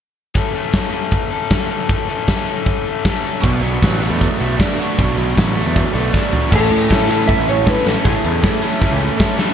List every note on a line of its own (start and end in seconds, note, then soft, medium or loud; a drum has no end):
0.35 0.55 A2 medium
0.35 0.55 E3 medium
0.35 0.55 A3 medium
0.35 0.54 C#4 medium
0.35 0.53 A4 medium
0.35 kick medium
0.35 closed hi-hat medium
0.53 1.89 A2 medium
0.53 0.72 E3 medium
0.53 0.73 A3 medium
0.53 0.73 C#4 medium
0.53 0.74 A4 medium
0.53 closed hi-hat medium
0.72 1.50 E3 medium
0.72 0.94 A3 medium
0.72 0.94 C#4 medium
0.72 0.92 A4 medium
0.72 kick medium
0.72 snare medium
0.72 closed hi-hat medium
0.92 1.33 A3 soft
0.92 1.31 C#4 medium
0.92 1.30 A4 medium
0.92 closed hi-hat medium
1.11 kick loud
1.11 closed hi-hat medium
1.31 1.52 A3 medium
1.31 1.51 C#4 medium
1.31 1.53 A4 medium
1.31 closed hi-hat soft
1.50 1.89 E3 medium
1.50 1.73 A3 medium
1.50 1.71 C#4 medium
1.50 1.70 A4 medium
1.50 kick medium
1.50 snare loud
1.50 closed hi-hat medium
1.70 1.91 A3 soft
1.70 1.90 C#4 medium
1.70 1.91 A4 medium
1.70 closed hi-hat medium
1.89 2.11 A2 medium
1.89 2.09 E3 medium
1.89 2.10 A3 medium
1.89 2.09 C#4 medium
1.89 2.09 A4 medium
1.89 kick loud
1.89 closed hi-hat medium
2.09 2.49 A2 medium
2.09 2.28 E3 medium
2.09 2.30 A3 medium
2.09 2.30 C#4 medium
2.09 2.31 A4 medium
2.09 closed hi-hat medium
2.27 2.67 E3 medium
2.27 2.50 A3 medium
2.27 2.48 C#4 medium
2.27 kick medium
2.27 snare medium
2.27 closed hi-hat medium
2.32 2.48 A4 medium
2.47 2.88 A3 medium
2.47 2.86 C#4 medium
2.47 2.86 A4 medium
2.47 closed hi-hat medium
2.66 kick loud
2.66 closed hi-hat medium
2.86 3.06 A3 medium
2.86 3.06 C#4 medium
2.86 3.08 A4 medium
2.86 closed hi-hat medium
3.05 3.43 E3 medium
3.05 3.26 A3 medium
3.05 3.25 C#4 medium
3.05 3.24 A4 medium
3.05 kick loud
3.05 snare loud
3.05 closed hi-hat medium
3.24 3.44 A3 soft
3.24 3.43 C#4 medium
3.24 3.45 A4 medium
3.24 closed hi-hat medium
3.44 3.79 B1 loud
3.44 3.65 B2 medium
3.44 3.64 F#3 medium
3.44 3.64 B3 medium
3.44 3.63 D4 loud
3.44 3.62 F#4 medium
3.44 kick loud
3.44 closed hi-hat medium
3.63 4.98 B2 medium
3.63 3.81 F#3 medium
3.63 3.82 B3 medium
3.63 3.83 D4 medium
3.63 3.83 F#4 medium
3.63 closed hi-hat medium
3.82 4.08 A1 medium
3.82 4.59 F#3 medium
3.82 4.03 B3 medium
3.82 4.02 D4 medium
3.82 4.01 F#4 medium
3.82 kick loud
3.82 snare loud
3.82 closed hi-hat medium
4.01 4.38 A3 medium
4.01 4.41 B3 soft
4.01 4.40 D4 medium
4.01 4.39 F#4 medium
4.01 closed hi-hat medium
4.10 4.28 E2 medium
4.21 5.16 F#3 medium
4.21 kick loud
4.21 closed hi-hat medium
4.38 4.57 B1 medium
4.38 5.35 A3 medium
4.38 4.60 D4 medium
4.38 4.60 F#4 medium
4.38 closed hi-hat medium
4.42 4.59 B3 medium
4.59 4.97 F#3 medium
4.59 4.81 B3 medium
4.59 4.80 D4 medium
4.59 4.79 F#4 medium
4.59 kick loud
4.59 snare loud
4.59 closed hi-hat medium
4.79 4.98 B3 medium
4.79 4.99 D4 medium
4.79 4.99 F#4 medium
4.79 closed hi-hat medium
4.98 5.33 B1 medium
4.98 5.19 B2 medium
4.98 5.18 F#3 medium
4.98 5.18 B3 medium
4.98 5.17 D4 medium
4.98 5.16 F#4 medium
4.98 kick loud
4.98 closed hi-hat medium
5.18 5.57 B2 medium
5.18 5.36 F#3 medium
5.18 5.36 B3 medium
5.18 5.38 D4 medium
5.18 5.38 F#4 medium
5.18 closed hi-hat medium
5.37 5.63 A1 medium
5.37 5.75 F#3 medium
5.37 5.56 B3 medium
5.37 5.54 D4 medium
5.37 5.53 F#4 medium
5.37 kick medium
5.37 snare loud
5.37 closed hi-hat medium
5.55 5.93 A3 medium
5.55 5.94 B3 medium
5.55 5.93 D4 medium
5.55 5.92 F#4 medium
5.55 closed hi-hat medium
5.66 5.83 E2 medium
5.76 6.51 F#3 medium
5.76 kick medium
5.76 closed hi-hat medium
5.93 6.11 B1 medium
5.93 6.51 A3 medium
5.93 6.12 B3 medium
5.93 6.13 D4 medium
5.93 6.13 F#4 medium
5.93 closed hi-hat medium
6.12 6.50 F#3 medium
6.12 6.32 B3 medium
6.12 6.31 D4 medium
6.12 6.30 F#4 medium
6.12 kick loud
6.12 snare medium
6.31 6.51 B3 medium
6.31 6.50 D4 medium
6.31 6.50 F#4 medium
6.31 floor tom medium
6.50 6.69 A1 medium
6.50 6.89 A2 medium
6.50 6.89 E3 medium
6.50 6.89 A3 medium
6.50 6.90 C#4 medium
6.50 6.91 E4 medium
6.50 6.91 A4 medium
6.50 kick loud
6.50 crash medium
6.56 7.26 A4 medium
6.71 7.34 A2 medium
6.71 closed hi-hat medium
6.90 7.07 A2 medium
6.90 7.08 E3 medium
6.90 7.08 A3 medium
6.90 7.09 C#4 medium
6.90 7.10 E4 medium
6.90 7.09 A4 medium
6.90 kick loud
6.90 snare loud
7.07 7.25 A2 medium
7.07 7.26 E3 medium
7.07 7.27 A3 medium
7.07 7.27 C#4 medium
7.07 7.28 E4 medium
7.07 7.28 A4 medium
7.07 closed hi-hat medium
7.26 7.65 A2 medium
7.26 7.65 E3 medium
7.26 7.66 A3 medium
7.26 7.66 C#4 loud
7.26 7.66 E4 medium
7.26 7.67 A4 medium
7.26 7.48 E5 medium
7.26 kick loud
7.39 7.64 A1 medium
7.48 7.68 C#5 loud
7.48 closed hi-hat medium
7.66 7.83 A2 medium
7.66 7.75 A2 medium
7.66 7.84 E3 medium
7.66 7.85 A3 medium
7.66 7.85 C#4 medium
7.66 7.87 E4 medium
7.66 7.87 A4 medium
7.66 7.87 B4 medium
7.66 kick loud
7.66 snare loud
7.84 7.94 A1 medium
7.84 8.03 A2 medium
7.84 8.04 E3 medium
7.84 8.05 A3 medium
7.84 8.04 C#4 medium
7.84 8.06 E4 medium
7.84 7.91 A4 medium
7.84 8.05 A4 medium
7.84 snare medium
7.84 closed hi-hat medium
8.04 8.14 A1 loud
8.04 8.42 A2 medium
8.04 8.43 E3 medium
8.04 8.44 A3 loud
8.04 8.44 C#4 medium
8.04 8.43 E4 medium
8.04 8.62 G#4 medium
8.04 8.45 A4 medium
8.04 kick loud
8.25 8.42 E2 medium
8.25 closed hi-hat medium
8.43 8.62 A2 medium
8.43 8.63 E3 medium
8.43 8.64 A3 medium
8.43 8.63 C#4 medium
8.43 8.63 E4 medium
8.43 8.64 A4 medium
8.43 kick loud
8.43 snare medium
8.62 8.80 A2 medium
8.62 8.81 E3 medium
8.62 8.82 A3 medium
8.62 8.82 C#4 medium
8.62 8.81 E4 medium
8.62 8.82 A4 medium
8.62 closed hi-hat medium
8.81 9.18 A2 medium
8.81 9.19 E3 medium
8.81 9.20 A3 loud
8.81 9.19 C#4 loud
8.81 9.18 E4 medium
8.81 9.21 A4 loud
8.81 kick loud
8.91 9.09 C#2 medium
9.00 closed hi-hat medium
9.19 9.36 A2 medium
9.19 9.37 E3 medium
9.19 9.38 A3 medium
9.19 9.38 C#4 medium
9.19 9.37 E4 medium
9.19 9.39 A4 medium
9.19 kick loud
9.19 snare loud
9.38 9.54 A2 medium
9.38 9.54 E3 medium
9.38 9.54 A3 medium
9.38 9.54 C#4 medium
9.38 9.54 E4 medium
9.38 9.54 A4 medium
9.38 snare medium
9.38 closed hi-hat medium